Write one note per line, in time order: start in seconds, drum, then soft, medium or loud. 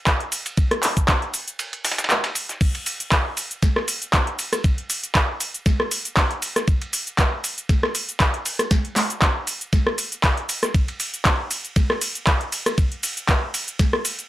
0.07 kick loud
0.07 snare loud
0.07 clap loud
0.07 ride medium
0.07 shaker soft
0.20 closed hi-hat medium
0.32 open hi-hat medium
0.32 ride medium
0.32 shaker medium
0.46 closed hi-hat medium
0.46 ride soft
0.46 shaker soft
0.57 kick loud
0.57 ride medium
0.57 shaker soft
0.71 cross-stick medium
0.71 closed hi-hat medium
0.83 clap medium
0.83 open hi-hat loud
0.83 ride medium
0.83 shaker medium
0.97 kick medium
0.97 closed hi-hat medium
0.97 shaker soft
1.08 kick loud
1.08 snare loud
1.08 clap loud
1.08 ride medium
1.08 shaker soft
1.22 closed hi-hat soft
1.34 open hi-hat medium
1.34 ride medium
1.34 shaker medium
1.48 closed hi-hat medium
1.48 shaker soft
1.59 ride medium
1.59 shaker soft
1.73 closed hi-hat soft
1.73 ride soft
1.85 snare medium
1.85 open hi-hat loud
1.85 ride medium
1.85 shaker medium
1.92 snare medium
1.92 ride medium
1.98 snare medium
1.98 closed hi-hat medium
1.98 ride medium
1.98 shaker soft
2.04 snare medium
2.04 ride medium
2.10 snare loud
2.10 clap loud
2.10 ride medium
2.10 shaker soft
2.24 snare loud
2.24 closed hi-hat medium
2.24 ride medium
2.35 open hi-hat medium
2.35 ride medium
2.35 shaker medium
2.49 snare soft
2.49 closed hi-hat medium
2.49 shaker soft
2.61 kick loud
2.61 crash loud
2.61 ride medium
2.61 shaker soft
2.75 closed hi-hat medium
2.75 ride soft
2.86 open hi-hat loud
2.86 ride medium
2.86 shaker medium
3.00 closed hi-hat medium
3.00 shaker soft
3.12 kick loud
3.12 snare loud
3.12 clap loud
3.12 ride medium
3.12 shaker soft
3.37 open hi-hat medium
3.37 ride medium
3.37 shaker medium
3.51 closed hi-hat medium
3.51 shaker soft
3.63 kick loud
3.63 snare soft
3.63 ride medium
3.63 shaker soft
3.76 cross-stick medium
3.76 snare soft
3.88 open hi-hat loud
3.88 ride medium
3.88 shaker medium
4.02 closed hi-hat medium
4.02 shaker soft
4.13 kick loud
4.13 snare loud
4.13 clap loud
4.13 ride medium
4.13 shaker soft
4.27 closed hi-hat medium
4.39 open hi-hat medium
4.39 ride medium
4.39 shaker medium
4.53 cross-stick medium
4.53 closed hi-hat medium
4.53 ride soft
4.53 shaker soft
4.64 kick loud
4.64 ride medium
4.64 shaker soft
4.78 closed hi-hat medium
4.90 open hi-hat loud
4.90 ride medium
4.90 shaker medium
5.04 closed hi-hat medium
5.04 shaker soft
5.15 kick loud
5.15 snare loud
5.15 clap loud
5.15 ride medium
5.15 shaker soft
5.40 open hi-hat loud
5.40 ride medium
5.40 shaker medium
5.54 closed hi-hat medium
5.54 shaker soft
5.66 kick loud
5.66 snare soft
5.66 ride medium
5.66 shaker soft
5.80 cross-stick medium
5.91 open hi-hat loud
5.91 ride medium
5.91 shaker medium
6.05 closed hi-hat medium
6.05 shaker soft
6.17 kick loud
6.17 snare loud
6.17 clap loud
6.17 open hi-hat medium
6.17 shaker soft
6.31 closed hi-hat medium
6.42 open hi-hat loud
6.42 ride medium
6.42 shaker medium
6.56 cross-stick medium
6.56 snare soft
6.56 closed hi-hat medium
6.56 shaker soft
6.68 kick loud
6.68 ride medium
6.68 shaker soft
6.82 closed hi-hat medium
6.82 ride soft
6.93 open hi-hat loud
6.93 ride medium
6.93 shaker medium
7.07 closed hi-hat medium
7.07 shaker soft
7.19 kick loud
7.19 snare loud
7.19 clap loud
7.19 ride medium
7.19 shaker soft
7.44 open hi-hat loud
7.44 ride medium
7.44 shaker medium
7.58 closed hi-hat medium
7.58 shaker soft
7.69 kick loud
7.69 snare soft
7.69 ride medium
7.69 shaker soft
7.83 cross-stick medium
7.83 snare soft
7.95 open hi-hat loud
7.95 ride medium
7.95 shaker medium
8.09 closed hi-hat medium
8.09 shaker soft
8.20 kick loud
8.20 snare loud
8.20 clap loud
8.20 ride medium
8.20 shaker soft
8.34 closed hi-hat medium
8.45 open hi-hat loud
8.45 ride medium
8.45 shaker medium
8.59 cross-stick medium
8.59 closed hi-hat medium
8.59 ride soft
8.59 shaker soft
8.71 kick loud
8.71 snare medium
8.71 ride medium
8.71 shaker soft
8.85 closed hi-hat medium
8.96 snare medium
8.96 clap medium
8.96 open hi-hat loud
8.96 ride medium
8.96 shaker medium
9.10 closed hi-hat medium
9.10 shaker soft
9.22 kick loud
9.22 snare loud
9.22 clap loud
9.22 ride medium
9.22 shaker soft
9.47 open hi-hat loud
9.47 ride medium
9.47 shaker medium
9.61 closed hi-hat medium
9.61 shaker soft
9.73 kick loud
9.73 snare soft
9.73 ride medium
9.73 shaker soft
9.87 cross-stick medium
9.98 open hi-hat loud
9.98 ride medium
9.98 shaker medium
10.12 closed hi-hat medium
10.12 shaker soft
10.24 kick loud
10.24 snare loud
10.24 clap loud
10.24 open hi-hat medium
10.24 shaker soft
10.37 closed hi-hat medium
10.49 open hi-hat medium
10.49 ride medium
10.49 shaker medium
10.63 cross-stick medium
10.63 snare soft
10.63 closed hi-hat medium
10.63 shaker soft
10.74 kick loud
10.74 ride medium
10.74 shaker soft
10.88 closed hi-hat soft
10.88 ride soft
11.00 open hi-hat loud
11.00 ride medium
11.00 shaker medium
11.14 closed hi-hat medium
11.14 shaker soft
11.25 kick loud
11.25 snare loud
11.25 clap loud
11.25 ride medium
11.25 shaker soft
11.51 open hi-hat medium
11.51 ride medium
11.51 shaker medium
11.65 closed hi-hat medium
11.65 shaker soft
11.76 kick loud
11.76 snare soft
11.76 ride medium
11.76 shaker soft
11.90 cross-stick medium
11.90 snare soft
12.01 open hi-hat loud
12.01 ride medium
12.01 shaker medium
12.15 closed hi-hat medium
12.15 shaker soft
12.27 kick loud
12.27 snare loud
12.27 clap loud
12.27 ride medium
12.27 shaker soft
12.41 closed hi-hat medium
12.52 open hi-hat medium
12.52 ride medium
12.52 shaker medium
12.66 cross-stick medium
12.66 closed hi-hat medium
12.66 ride soft
12.66 shaker soft
12.78 kick loud
12.78 ride medium
12.78 shaker soft
12.92 closed hi-hat medium
13.03 open hi-hat loud
13.03 ride medium
13.03 shaker medium
13.17 closed hi-hat medium
13.17 shaker soft
13.29 kick loud
13.29 snare loud
13.29 clap loud
13.29 ride medium
13.29 shaker soft
13.54 open hi-hat medium
13.54 ride medium
13.54 shaker medium
13.68 closed hi-hat medium
13.68 shaker soft
13.79 kick loud
13.79 snare soft
13.79 ride medium
13.79 ride loud
13.79 shaker soft
13.93 cross-stick medium
14.05 open hi-hat loud
14.05 ride medium
14.05 shaker medium
14.19 closed hi-hat medium
14.19 shaker soft